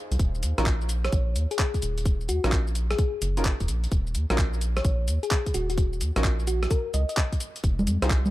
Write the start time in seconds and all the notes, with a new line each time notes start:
Already playing: D#4 G#4 C5 F5
0.11 C2, closed hi-hat, shaker
0.19 D#1, kick, closed hi-hat, shaker
0.35 shaker
0.43 D#2, closed hi-hat, shaker
0.58 A#1 C#4 D#4 F4 F#4 A#4, cross-stick, closed hi-hat, shaker
0.66 kick, clap, shaker
0.81 shaker
0.89 closed hi-hat, shaker
1.05 C#5, cross-stick, closed hi-hat, shaker
1.12 A#1, kick, closed hi-hat, shaker
1.36 D#2, closed hi-hat, shaker
1.51 G#4, closed hi-hat, shaker
1.59 kick, clap, shaker
1.74 kick, closed hi-hat, shaker
1.82 D#1, closed hi-hat, shaker
1.98 closed hi-hat, shaker
2.06 kick, closed hi-hat, shaker
2.21 shaker
2.29 D#2 F#4, closed hi-hat, shaker
2.44 A#1 C#4 D#4 F4 F#4 A#4, cross-stick, closed hi-hat, shaker
2.52 kick, clap, shaker
2.67 shaker
2.75 closed hi-hat, shaker
2.91 G#4, cross-stick, closed hi-hat, shaker
2.98 kick, closed hi-hat, shaker
3.22 F#1, closed hi-hat, shaker
3.37 C#4 D#4 F4 F#4 A#4, closed hi-hat, shaker
3.45 kick, clap, shaker
3.60 D#1, kick, closed hi-hat, shaker
3.68 A#1, closed hi-hat, shaker
3.84 closed hi-hat, shaker
3.92 D#1, kick, closed hi-hat, shaker
4.07 shaker
4.15 D#2, closed hi-hat, shaker
4.30 A#1 C#4 D#4 F4 F#4 A#4, cross-stick, closed hi-hat, shaker
4.38 kick, clap, shaker
4.53 shaker
4.61 closed hi-hat, shaker
4.77 C#5, cross-stick, closed hi-hat, shaker
4.85 A#1, kick, closed hi-hat, shaker
5.08 D#2, closed hi-hat, shaker
5.23 G#4, closed hi-hat, shaker
5.31 kick, clap, shaker
5.46 kick, closed hi-hat, shaker
5.54 D#1 F#4, closed hi-hat, shaker
5.70 F#4, closed hi-hat, shaker
5.78 kick, closed hi-hat, shaker
5.93 shaker
6.01 D#2, closed hi-hat, shaker
6.16 A#1 C#4 D#4 F4 F#4 A#4, cross-stick, closed hi-hat, shaker
6.24 kick, clap, shaker
6.39 shaker
6.47 F#4, closed hi-hat, shaker
6.63 cross-stick, closed hi-hat, shaker
6.71 A#4, kick, closed hi-hat, shaker
6.94 C#2 D#5, closed hi-hat, shaker
7.09 D#5, closed hi-hat, shaker
7.17 kick, clap, shaker
7.33 kick, closed hi-hat, shaker
7.40 closed hi-hat, shaker
7.56 closed hi-hat, shaker
7.64 F1, kick, closed hi-hat, shaker
7.79 high conga, shaker
7.87 F2, closed hi-hat, shaker
8.02 C2 D#4 F4 G4 G#4 C5, cross-stick, closed hi-hat, shaker
8.10 kick, clap, shaker
8.26 high conga, shaker